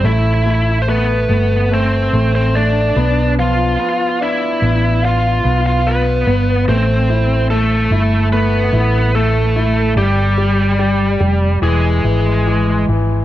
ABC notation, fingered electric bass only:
X:1
M:4/4
L:1/8
Q:1/4=72
K:Am
V:1 name="Fingered electric bass" clef=bass
A,,,3 G,,,2 A,,,2 B,,,- | B,,, z2 A,,,2 B,,,2 G,,, | A,,,3 G,,,2 A,,,3 | G,,,3 F,,, E,,, ^G,,,2 G,,, |]